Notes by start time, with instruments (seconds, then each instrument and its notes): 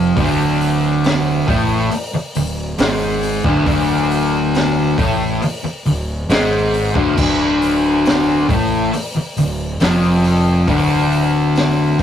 Already playing: fingered electric bass F1, distorted electric guitar F2 F3
0.17 fingered electric bass D1, distorted electric guitar D2 D3, kick, open hi-hat
0.61 open hi-hat
1.04 snare, open hi-hat
1.48 fingered electric bass A1, distorted electric guitar A2 A3, kick, open hi-hat
1.91 muted fingered electric bass stroke, muted distorted electric guitar stroke, open hi-hat
2.14 muted fingered electric bass stroke, muted distorted electric guitar stroke
2.35 fingered electric bass D1, distorted electric guitar D2, open hi-hat
2.78 fingered electric bass G#1, distorted electric guitar G#2 G#3, snare, open hi-hat
3.23 open hi-hat
3.44 fingered electric bass D1, distorted electric guitar D2 D3, kick
3.66 fingered electric bass D1, distorted electric guitar D2 D3, kick, open hi-hat
4.11 open hi-hat
4.54 snare, open hi-hat
4.98 fingered electric bass A1, distorted electric guitar A2 A3, kick, open hi-hat
5.42 muted fingered electric bass stroke, muted distorted electric guitar stroke, open hi-hat
5.64 muted distorted electric guitar stroke, muted fingered electric bass stroke
5.85 fingered electric bass D1, distorted electric guitar D2, open hi-hat
6.29 fingered electric bass G#1, distorted electric guitar G#2 G#3, snare, open hi-hat
6.74 open hi-hat
6.95 fingered electric bass D1, distorted electric guitar D2 D3, kick
7.17 fingered electric bass D1, distorted electric guitar D2 D3, kick, crash
7.62 open hi-hat
8.05 snare, open hi-hat
8.49 fingered electric bass A1, distorted electric guitar A2 A3, kick, open hi-hat
8.93 muted fingered electric bass stroke, muted distorted electric guitar stroke, open hi-hat
9.14 muted fingered electric bass stroke, muted distorted electric guitar stroke
9.36 fingered electric bass D1, distorted electric guitar D2, open hi-hat
9.80 fingered electric bass F1, distorted electric guitar F2 F3, snare, open hi-hat
10.24 open hi-hat
10.68 fingered electric bass D1, distorted electric guitar D2 D3, kick, open hi-hat
11.12 open hi-hat
11.56 snare, open hi-hat
11.99 fingered electric bass A1, distorted electric guitar A2, kick, open hi-hat